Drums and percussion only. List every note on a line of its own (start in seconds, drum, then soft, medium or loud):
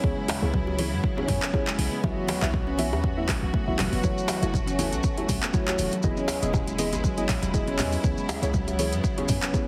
0.04 kick loud
0.04 high conga medium
0.28 open hi-hat medium
0.28 muted conga soft
0.28 djembe slap loud
0.28 djembe tone medium
0.42 high conga medium
0.54 kick loud
0.54 low conga medium
0.67 muted conga soft
0.67 djembe tone medium
0.79 open hi-hat medium
0.79 high conga loud
1.04 kick loud
1.04 muted conga soft
1.18 djembe tone medium
1.28 kick medium
1.28 open hi-hat medium
1.28 low conga medium
1.42 clap medium
1.42 muted conga soft
1.54 kick loud
1.54 djembe tone medium
1.67 clap medium
1.78 open hi-hat medium
1.78 high conga medium
1.91 muted conga soft
2.03 kick loud
2.03 high conga loud
2.03 djembe tone medium
2.27 open hi-hat medium
2.27 muted conga soft
2.27 djembe slap loud
2.27 high conga medium
2.42 clap medium
2.42 djembe tone medium
2.42 high conga medium
2.54 kick loud
2.54 low conga medium
2.67 muted conga soft
2.78 open hi-hat medium
2.78 high conga loud
2.93 djembe tone medium
3.04 kick loud
3.04 muted conga soft
3.28 kick medium
3.28 clap medium
3.28 open hi-hat medium
3.28 djembe slap medium
3.28 djembe tone medium
3.28 low conga medium
3.43 muted conga soft
3.54 kick loud
3.78 clap medium
3.78 open hi-hat medium
3.78 djembe tone medium
3.78 low conga medium
3.93 open hi-hat soft
3.93 muted conga medium
4.04 kick loud
4.04 high conga medium
4.04 maracas medium
4.18 maracas soft
4.28 open hi-hat medium
4.28 djembe slap loud
4.28 muted conga medium
4.28 djembe tone medium
4.28 maracas medium
4.42 closed hi-hat medium
4.42 high conga medium
4.42 maracas soft
4.54 kick loud
4.54 low conga medium
4.54 maracas medium
4.67 closed hi-hat soft
4.67 muted conga soft
4.67 maracas soft
4.79 open hi-hat medium
4.79 high conga medium
4.79 djembe tone medium
4.79 maracas medium
4.93 closed hi-hat medium
4.93 maracas soft
5.03 kick loud
5.03 muted conga soft
5.03 maracas medium
5.18 closed hi-hat soft
5.18 djembe tone medium
5.29 kick medium
5.29 open hi-hat medium
5.29 low conga medium
5.29 maracas medium
5.43 clap medium
5.43 closed hi-hat medium
5.43 muted conga soft
5.43 maracas soft
5.53 kick loud
5.53 maracas medium
5.68 clap medium
5.68 closed hi-hat soft
5.68 djembe tone medium
5.78 open hi-hat medium
5.78 high conga medium
5.78 maracas medium
5.91 closed hi-hat medium
5.91 muted conga soft
5.91 maracas soft
6.02 kick loud
6.02 high conga medium
6.02 djembe tone medium
6.02 maracas soft
6.17 maracas soft
6.28 open hi-hat medium
6.28 djembe slap loud
6.28 muted conga soft
6.28 maracas medium
6.42 closed hi-hat medium
6.42 high conga medium
6.42 maracas soft
6.53 kick loud
6.53 djembe tone medium
6.53 low conga medium
6.53 maracas soft
6.67 closed hi-hat soft
6.67 muted conga soft
6.67 maracas soft
6.78 open hi-hat medium
6.78 high conga medium
6.78 maracas medium
6.93 closed hi-hat medium
6.93 djembe tone medium
6.93 maracas soft
7.04 kick loud
7.04 muted conga medium
7.04 maracas medium
7.17 closed hi-hat soft
7.17 maracas soft
7.29 kick medium
7.29 clap medium
7.29 open hi-hat medium
7.29 djembe slap medium
7.29 low conga medium
7.29 maracas medium
7.42 closed hi-hat medium
7.42 muted conga soft
7.42 djembe tone medium
7.42 maracas soft
7.54 kick loud
7.54 maracas soft
7.67 closed hi-hat soft
7.78 clap medium
7.78 open hi-hat medium
7.78 djembe tone medium
7.78 low conga medium
7.78 maracas medium
7.92 open hi-hat soft
7.92 muted conga medium
7.92 maracas soft
8.03 kick loud
8.03 high conga medium
8.03 maracas soft
8.17 maracas soft
8.29 open hi-hat medium
8.29 djembe slap loud
8.29 muted conga medium
8.29 djembe tone medium
8.29 maracas medium
8.42 closed hi-hat medium
8.42 high conga medium
8.42 maracas soft
8.53 kick loud
8.53 low conga medium
8.53 maracas soft
8.68 closed hi-hat soft
8.68 muted conga soft
8.68 djembe tone medium
8.68 maracas soft
8.79 open hi-hat medium
8.79 high conga loud
8.79 maracas medium
8.93 closed hi-hat medium
8.93 maracas soft
9.03 kick loud
9.03 muted conga medium
9.03 maracas soft
9.18 closed hi-hat soft
9.18 djembe tone medium
9.28 kick medium
9.28 open hi-hat medium
9.28 low conga medium
9.28 maracas medium
9.42 clap medium
9.42 closed hi-hat medium
9.42 muted conga soft
9.42 maracas soft
9.54 kick loud
9.54 djembe tone medium
9.54 maracas soft